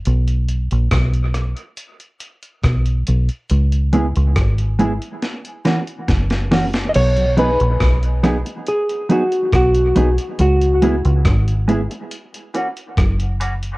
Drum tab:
CC |----------------|----------------|x---------------|----------------|
HH |xxxxxxxxxxxxxxxx|xxxxxxxxxxxxxxox|xxxxxxxxxxxxxxxx|xxxxxxxxxxxxxxxx|
SD |----r-r-----r---|----r---o-o-oooo|----r-r-----r---|----r-------r---|
BD |----o-------o---|----o-------o---|----o-------o---|----o-------o---|